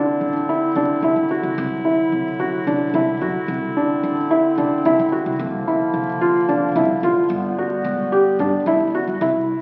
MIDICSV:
0, 0, Header, 1, 4, 480
1, 0, Start_track
1, 0, Tempo, 546448
1, 1381, Time_signature, 7, 3, 24, 8
1, 8447, End_track
2, 0, Start_track
2, 0, Title_t, "Felt piano"
2, 0, Program_c, 0, 0
2, 0, Note_on_c, 0, 62, 70
2, 286, Note_off_c, 0, 62, 0
2, 431, Note_on_c, 0, 64, 65
2, 597, Note_off_c, 0, 64, 0
2, 670, Note_on_c, 0, 62, 63
2, 836, Note_off_c, 0, 62, 0
2, 912, Note_on_c, 0, 64, 70
2, 1078, Note_off_c, 0, 64, 0
2, 1148, Note_on_c, 0, 66, 69
2, 1315, Note_off_c, 0, 66, 0
2, 1624, Note_on_c, 0, 64, 65
2, 1961, Note_off_c, 0, 64, 0
2, 2105, Note_on_c, 0, 66, 69
2, 2273, Note_off_c, 0, 66, 0
2, 2346, Note_on_c, 0, 62, 60
2, 2514, Note_off_c, 0, 62, 0
2, 2590, Note_on_c, 0, 64, 67
2, 2756, Note_off_c, 0, 64, 0
2, 2824, Note_on_c, 0, 66, 66
2, 2992, Note_off_c, 0, 66, 0
2, 3309, Note_on_c, 0, 62, 64
2, 3644, Note_off_c, 0, 62, 0
2, 3783, Note_on_c, 0, 64, 73
2, 3951, Note_off_c, 0, 64, 0
2, 4023, Note_on_c, 0, 62, 65
2, 4191, Note_off_c, 0, 62, 0
2, 4267, Note_on_c, 0, 64, 82
2, 4434, Note_off_c, 0, 64, 0
2, 4499, Note_on_c, 0, 66, 68
2, 4668, Note_off_c, 0, 66, 0
2, 4985, Note_on_c, 0, 64, 68
2, 5322, Note_off_c, 0, 64, 0
2, 5457, Note_on_c, 0, 65, 76
2, 5627, Note_off_c, 0, 65, 0
2, 5697, Note_on_c, 0, 62, 71
2, 5867, Note_off_c, 0, 62, 0
2, 5939, Note_on_c, 0, 64, 70
2, 6108, Note_off_c, 0, 64, 0
2, 6180, Note_on_c, 0, 65, 75
2, 6349, Note_off_c, 0, 65, 0
2, 6662, Note_on_c, 0, 66, 65
2, 6999, Note_off_c, 0, 66, 0
2, 7134, Note_on_c, 0, 67, 74
2, 7305, Note_off_c, 0, 67, 0
2, 7378, Note_on_c, 0, 62, 72
2, 7547, Note_off_c, 0, 62, 0
2, 7617, Note_on_c, 0, 64, 78
2, 7787, Note_off_c, 0, 64, 0
2, 7859, Note_on_c, 0, 66, 68
2, 8028, Note_off_c, 0, 66, 0
2, 8096, Note_on_c, 0, 64, 71
2, 8435, Note_off_c, 0, 64, 0
2, 8447, End_track
3, 0, Start_track
3, 0, Title_t, "Woodwind section"
3, 0, Program_c, 1, 71
3, 0, Note_on_c, 1, 50, 65
3, 0, Note_on_c, 1, 60, 61
3, 0, Note_on_c, 1, 64, 71
3, 1368, Note_off_c, 1, 60, 0
3, 1380, Note_on_c, 1, 54, 60
3, 3027, Note_off_c, 1, 50, 0
3, 3043, Note_off_c, 1, 54, 0
3, 3071, Note_on_c, 1, 50, 65
3, 3073, Note_on_c, 1, 60, 64
3, 4705, Note_off_c, 1, 64, 0
3, 4725, Note_off_c, 1, 50, 0
3, 4729, Note_off_c, 1, 60, 0
3, 4734, Note_on_c, 1, 58, 59
3, 4735, Note_on_c, 1, 50, 70
3, 4737, Note_on_c, 1, 53, 75
3, 6262, Note_off_c, 1, 53, 0
3, 6262, Note_off_c, 1, 58, 0
3, 6411, Note_on_c, 1, 59, 64
3, 6415, Note_on_c, 1, 55, 74
3, 8062, Note_off_c, 1, 50, 0
3, 8077, Note_off_c, 1, 59, 0
3, 8079, Note_off_c, 1, 55, 0
3, 8447, End_track
4, 0, Start_track
4, 0, Title_t, "Upright bass"
4, 0, Program_c, 2, 32
4, 183, Note_on_c, 2, 33, 70
4, 365, Note_off_c, 2, 33, 0
4, 662, Note_on_c, 2, 48, 72
4, 753, Note_off_c, 2, 48, 0
4, 900, Note_on_c, 2, 36, 79
4, 992, Note_off_c, 2, 36, 0
4, 1020, Note_on_c, 2, 33, 65
4, 1112, Note_off_c, 2, 33, 0
4, 1257, Note_on_c, 2, 36, 71
4, 1350, Note_off_c, 2, 36, 0
4, 1386, Note_on_c, 2, 36, 94
4, 1567, Note_off_c, 2, 36, 0
4, 1864, Note_on_c, 2, 48, 71
4, 2045, Note_off_c, 2, 48, 0
4, 2345, Note_on_c, 2, 48, 79
4, 2526, Note_off_c, 2, 48, 0
4, 2580, Note_on_c, 2, 36, 87
4, 2763, Note_off_c, 2, 36, 0
4, 2823, Note_on_c, 2, 42, 72
4, 2913, Note_off_c, 2, 42, 0
4, 3058, Note_on_c, 2, 36, 87
4, 3241, Note_off_c, 2, 36, 0
4, 3543, Note_on_c, 2, 33, 73
4, 3725, Note_off_c, 2, 33, 0
4, 4019, Note_on_c, 2, 48, 77
4, 4110, Note_off_c, 2, 48, 0
4, 4263, Note_on_c, 2, 36, 86
4, 4353, Note_off_c, 2, 36, 0
4, 4386, Note_on_c, 2, 33, 76
4, 4475, Note_off_c, 2, 33, 0
4, 4620, Note_on_c, 2, 36, 78
4, 4711, Note_off_c, 2, 36, 0
4, 4738, Note_on_c, 2, 36, 93
4, 4921, Note_off_c, 2, 36, 0
4, 5213, Note_on_c, 2, 48, 76
4, 5398, Note_off_c, 2, 48, 0
4, 5700, Note_on_c, 2, 48, 73
4, 5882, Note_off_c, 2, 48, 0
4, 5934, Note_on_c, 2, 36, 87
4, 6118, Note_off_c, 2, 36, 0
4, 6175, Note_on_c, 2, 33, 79
4, 6268, Note_off_c, 2, 33, 0
4, 6409, Note_on_c, 2, 31, 89
4, 6595, Note_off_c, 2, 31, 0
4, 6890, Note_on_c, 2, 28, 82
4, 7076, Note_off_c, 2, 28, 0
4, 7370, Note_on_c, 2, 43, 77
4, 7464, Note_off_c, 2, 43, 0
4, 7607, Note_on_c, 2, 31, 88
4, 7702, Note_off_c, 2, 31, 0
4, 7732, Note_on_c, 2, 28, 64
4, 7825, Note_off_c, 2, 28, 0
4, 7970, Note_on_c, 2, 31, 68
4, 8065, Note_off_c, 2, 31, 0
4, 8089, Note_on_c, 2, 36, 89
4, 8367, Note_off_c, 2, 36, 0
4, 8447, End_track
0, 0, End_of_file